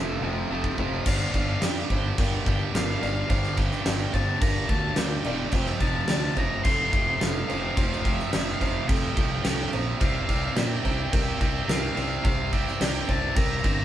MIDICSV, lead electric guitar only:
0, 0, Header, 1, 2, 480
1, 0, Start_track
1, 0, Key_signature, -2, "minor"
1, 0, Tempo, 559180
1, 916, Time_signature, 4, 2, 24, 8
1, 11887, End_track
2, 0, Start_track
2, 0, Title_t, "Lead electric guitar"
2, 0, Program_c, 0, 29
2, 921, Note_on_c, 0, 77, 86
2, 991, Note_off_c, 0, 77, 0
2, 995, Note_on_c, 0, 77, 61
2, 1059, Note_off_c, 0, 77, 0
2, 1063, Note_on_c, 0, 77, 77
2, 1133, Note_off_c, 0, 77, 0
2, 1136, Note_on_c, 0, 77, 66
2, 1200, Note_off_c, 0, 77, 0
2, 1203, Note_on_c, 0, 77, 75
2, 1273, Note_off_c, 0, 77, 0
2, 1277, Note_on_c, 0, 77, 63
2, 1332, Note_off_c, 0, 77, 0
2, 1335, Note_on_c, 0, 77, 67
2, 1397, Note_off_c, 0, 77, 0
2, 1401, Note_on_c, 0, 79, 91
2, 1632, Note_off_c, 0, 79, 0
2, 1642, Note_on_c, 0, 79, 84
2, 1871, Note_off_c, 0, 79, 0
2, 1881, Note_on_c, 0, 79, 97
2, 2101, Note_off_c, 0, 79, 0
2, 2117, Note_on_c, 0, 79, 84
2, 2357, Note_off_c, 0, 79, 0
2, 2361, Note_on_c, 0, 77, 87
2, 2427, Note_off_c, 0, 77, 0
2, 2432, Note_on_c, 0, 77, 67
2, 2497, Note_off_c, 0, 77, 0
2, 2501, Note_on_c, 0, 77, 78
2, 2552, Note_off_c, 0, 77, 0
2, 2556, Note_on_c, 0, 77, 74
2, 2618, Note_off_c, 0, 77, 0
2, 2621, Note_on_c, 0, 77, 84
2, 2688, Note_off_c, 0, 77, 0
2, 2695, Note_on_c, 0, 77, 69
2, 2749, Note_off_c, 0, 77, 0
2, 2753, Note_on_c, 0, 77, 74
2, 2820, Note_off_c, 0, 77, 0
2, 2838, Note_on_c, 0, 77, 98
2, 3059, Note_off_c, 0, 77, 0
2, 3084, Note_on_c, 0, 79, 115
2, 3141, Note_off_c, 0, 79, 0
2, 3145, Note_on_c, 0, 79, 88
2, 3205, Note_off_c, 0, 79, 0
2, 3208, Note_on_c, 0, 79, 98
2, 3271, Note_off_c, 0, 79, 0
2, 3276, Note_on_c, 0, 79, 85
2, 3331, Note_off_c, 0, 79, 0
2, 3334, Note_on_c, 0, 79, 100
2, 3389, Note_off_c, 0, 79, 0
2, 3392, Note_on_c, 0, 79, 82
2, 3455, Note_off_c, 0, 79, 0
2, 3464, Note_on_c, 0, 79, 95
2, 3527, Note_off_c, 0, 79, 0
2, 3550, Note_on_c, 0, 81, 97
2, 3783, Note_off_c, 0, 81, 0
2, 3787, Note_on_c, 0, 82, 114
2, 4025, Note_off_c, 0, 82, 0
2, 4028, Note_on_c, 0, 81, 97
2, 4277, Note_off_c, 0, 81, 0
2, 4278, Note_on_c, 0, 79, 100
2, 4344, Note_off_c, 0, 79, 0
2, 4351, Note_on_c, 0, 79, 82
2, 4405, Note_off_c, 0, 79, 0
2, 4409, Note_on_c, 0, 79, 97
2, 4472, Note_off_c, 0, 79, 0
2, 4475, Note_on_c, 0, 79, 90
2, 4535, Note_off_c, 0, 79, 0
2, 4538, Note_on_c, 0, 79, 93
2, 4593, Note_off_c, 0, 79, 0
2, 4597, Note_on_c, 0, 79, 83
2, 4662, Note_off_c, 0, 79, 0
2, 4665, Note_on_c, 0, 79, 84
2, 4730, Note_off_c, 0, 79, 0
2, 4746, Note_on_c, 0, 79, 105
2, 4983, Note_on_c, 0, 81, 113
2, 4995, Note_off_c, 0, 79, 0
2, 5037, Note_off_c, 0, 81, 0
2, 5040, Note_on_c, 0, 81, 87
2, 5103, Note_off_c, 0, 81, 0
2, 5107, Note_on_c, 0, 81, 96
2, 5166, Note_off_c, 0, 81, 0
2, 5169, Note_on_c, 0, 81, 84
2, 5230, Note_off_c, 0, 81, 0
2, 5234, Note_on_c, 0, 81, 107
2, 5292, Note_off_c, 0, 81, 0
2, 5296, Note_on_c, 0, 81, 89
2, 5352, Note_off_c, 0, 81, 0
2, 5355, Note_on_c, 0, 81, 94
2, 5417, Note_off_c, 0, 81, 0
2, 5424, Note_on_c, 0, 81, 76
2, 5473, Note_off_c, 0, 81, 0
2, 5476, Note_on_c, 0, 82, 101
2, 5691, Note_off_c, 0, 82, 0
2, 5694, Note_on_c, 0, 84, 97
2, 5749, Note_off_c, 0, 84, 0
2, 5752, Note_on_c, 0, 84, 81
2, 5812, Note_off_c, 0, 84, 0
2, 5816, Note_on_c, 0, 84, 96
2, 5879, Note_off_c, 0, 84, 0
2, 5886, Note_on_c, 0, 84, 80
2, 5938, Note_off_c, 0, 84, 0
2, 5942, Note_on_c, 0, 84, 95
2, 6003, Note_off_c, 0, 84, 0
2, 6006, Note_on_c, 0, 84, 83
2, 6063, Note_off_c, 0, 84, 0
2, 6066, Note_on_c, 0, 84, 89
2, 6129, Note_off_c, 0, 84, 0
2, 6139, Note_on_c, 0, 84, 73
2, 6182, Note_on_c, 0, 77, 108
2, 6202, Note_off_c, 0, 84, 0
2, 6241, Note_off_c, 0, 77, 0
2, 6245, Note_on_c, 0, 77, 81
2, 6311, Note_off_c, 0, 77, 0
2, 6317, Note_on_c, 0, 77, 93
2, 6384, Note_off_c, 0, 77, 0
2, 6387, Note_on_c, 0, 77, 81
2, 6442, Note_off_c, 0, 77, 0
2, 6445, Note_on_c, 0, 77, 97
2, 6511, Note_off_c, 0, 77, 0
2, 6514, Note_on_c, 0, 77, 86
2, 6578, Note_off_c, 0, 77, 0
2, 6582, Note_on_c, 0, 77, 92
2, 6648, Note_off_c, 0, 77, 0
2, 6658, Note_on_c, 0, 77, 98
2, 6716, Note_off_c, 0, 77, 0
2, 6720, Note_on_c, 0, 77, 84
2, 6787, Note_off_c, 0, 77, 0
2, 6800, Note_on_c, 0, 77, 96
2, 6852, Note_off_c, 0, 77, 0
2, 6855, Note_on_c, 0, 77, 76
2, 6920, Note_off_c, 0, 77, 0
2, 6923, Note_on_c, 0, 77, 82
2, 6985, Note_off_c, 0, 77, 0
2, 6988, Note_on_c, 0, 76, 98
2, 7054, Note_off_c, 0, 76, 0
2, 7063, Note_on_c, 0, 76, 76
2, 7119, Note_off_c, 0, 76, 0
2, 7122, Note_on_c, 0, 76, 82
2, 7185, Note_off_c, 0, 76, 0
2, 7189, Note_on_c, 0, 76, 77
2, 7249, Note_off_c, 0, 76, 0
2, 7252, Note_on_c, 0, 76, 81
2, 7309, Note_off_c, 0, 76, 0
2, 7312, Note_on_c, 0, 77, 102
2, 7377, Note_off_c, 0, 77, 0
2, 7380, Note_on_c, 0, 77, 76
2, 7435, Note_off_c, 0, 77, 0
2, 7438, Note_on_c, 0, 77, 95
2, 7501, Note_off_c, 0, 77, 0
2, 7504, Note_on_c, 0, 77, 75
2, 7570, Note_off_c, 0, 77, 0
2, 7574, Note_on_c, 0, 77, 78
2, 7620, Note_off_c, 0, 77, 0
2, 7623, Note_on_c, 0, 79, 93
2, 7692, Note_off_c, 0, 79, 0
2, 7698, Note_on_c, 0, 79, 64
2, 7752, Note_off_c, 0, 79, 0
2, 7755, Note_on_c, 0, 79, 76
2, 7824, Note_off_c, 0, 79, 0
2, 7833, Note_on_c, 0, 79, 69
2, 7901, Note_off_c, 0, 79, 0
2, 7904, Note_on_c, 0, 79, 84
2, 7966, Note_off_c, 0, 79, 0
2, 7969, Note_on_c, 0, 79, 67
2, 8028, Note_off_c, 0, 79, 0
2, 8031, Note_on_c, 0, 79, 75
2, 8100, Note_off_c, 0, 79, 0
2, 8109, Note_on_c, 0, 79, 67
2, 8178, Note_off_c, 0, 79, 0
2, 8186, Note_on_c, 0, 79, 74
2, 8242, Note_off_c, 0, 79, 0
2, 8246, Note_on_c, 0, 79, 60
2, 8315, Note_off_c, 0, 79, 0
2, 8590, Note_on_c, 0, 77, 83
2, 8639, Note_off_c, 0, 77, 0
2, 8643, Note_on_c, 0, 77, 66
2, 8705, Note_off_c, 0, 77, 0
2, 8716, Note_on_c, 0, 77, 85
2, 8772, Note_off_c, 0, 77, 0
2, 8776, Note_on_c, 0, 77, 69
2, 8838, Note_off_c, 0, 77, 0
2, 8841, Note_on_c, 0, 77, 87
2, 8898, Note_off_c, 0, 77, 0
2, 8901, Note_on_c, 0, 77, 72
2, 8961, Note_off_c, 0, 77, 0
2, 8965, Note_on_c, 0, 77, 79
2, 9026, Note_off_c, 0, 77, 0
2, 9029, Note_on_c, 0, 77, 65
2, 9075, Note_off_c, 0, 77, 0
2, 9079, Note_on_c, 0, 79, 90
2, 9144, Note_off_c, 0, 79, 0
2, 9147, Note_on_c, 0, 79, 63
2, 9210, Note_off_c, 0, 79, 0
2, 9213, Note_on_c, 0, 79, 75
2, 9273, Note_off_c, 0, 79, 0
2, 9276, Note_on_c, 0, 79, 68
2, 9336, Note_off_c, 0, 79, 0
2, 9339, Note_on_c, 0, 79, 75
2, 9406, Note_off_c, 0, 79, 0
2, 9416, Note_on_c, 0, 79, 62
2, 9472, Note_off_c, 0, 79, 0
2, 9475, Note_on_c, 0, 79, 70
2, 9542, Note_off_c, 0, 79, 0
2, 9554, Note_on_c, 0, 79, 99
2, 9624, Note_off_c, 0, 79, 0
2, 9631, Note_on_c, 0, 79, 76
2, 9689, Note_off_c, 0, 79, 0
2, 9692, Note_on_c, 0, 79, 93
2, 9762, Note_off_c, 0, 79, 0
2, 9766, Note_on_c, 0, 79, 79
2, 9833, Note_off_c, 0, 79, 0
2, 9836, Note_on_c, 0, 79, 93
2, 9900, Note_off_c, 0, 79, 0
2, 9904, Note_on_c, 0, 79, 76
2, 9975, Note_off_c, 0, 79, 0
2, 9980, Note_on_c, 0, 79, 81
2, 10037, Note_off_c, 0, 79, 0
2, 10040, Note_on_c, 0, 77, 95
2, 10107, Note_off_c, 0, 77, 0
2, 10117, Note_on_c, 0, 77, 72
2, 10168, Note_off_c, 0, 77, 0
2, 10172, Note_on_c, 0, 77, 83
2, 10231, Note_off_c, 0, 77, 0
2, 10235, Note_on_c, 0, 77, 75
2, 10298, Note_off_c, 0, 77, 0
2, 10302, Note_on_c, 0, 77, 90
2, 10363, Note_off_c, 0, 77, 0
2, 10367, Note_on_c, 0, 77, 75
2, 10434, Note_off_c, 0, 77, 0
2, 10441, Note_on_c, 0, 77, 71
2, 10508, Note_off_c, 0, 77, 0
2, 10522, Note_on_c, 0, 77, 100
2, 10742, Note_off_c, 0, 77, 0
2, 10759, Note_on_c, 0, 79, 99
2, 10826, Note_off_c, 0, 79, 0
2, 10830, Note_on_c, 0, 79, 68
2, 10893, Note_off_c, 0, 79, 0
2, 10896, Note_on_c, 0, 79, 88
2, 10966, Note_off_c, 0, 79, 0
2, 10969, Note_on_c, 0, 79, 79
2, 11037, Note_off_c, 0, 79, 0
2, 11040, Note_on_c, 0, 79, 86
2, 11106, Note_off_c, 0, 79, 0
2, 11109, Note_on_c, 0, 79, 77
2, 11180, Note_off_c, 0, 79, 0
2, 11194, Note_on_c, 0, 79, 81
2, 11242, Note_on_c, 0, 81, 88
2, 11264, Note_off_c, 0, 79, 0
2, 11468, Note_off_c, 0, 81, 0
2, 11471, Note_on_c, 0, 82, 126
2, 11528, Note_off_c, 0, 82, 0
2, 11531, Note_on_c, 0, 82, 83
2, 11593, Note_off_c, 0, 82, 0
2, 11598, Note_on_c, 0, 82, 100
2, 11654, Note_off_c, 0, 82, 0
2, 11657, Note_on_c, 0, 82, 91
2, 11718, Note_off_c, 0, 82, 0
2, 11721, Note_on_c, 0, 82, 113
2, 11783, Note_off_c, 0, 82, 0
2, 11787, Note_on_c, 0, 82, 91
2, 11838, Note_off_c, 0, 82, 0
2, 11842, Note_on_c, 0, 82, 107
2, 11887, Note_off_c, 0, 82, 0
2, 11887, End_track
0, 0, End_of_file